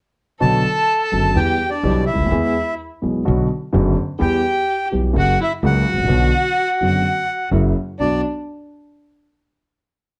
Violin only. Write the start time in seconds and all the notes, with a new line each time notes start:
0.42 A4
1.37 G4
1.73 D4
2.08 E4
4.21 G4
5.17 F#4
5.41 E4
5.65 F#4
7.99 D4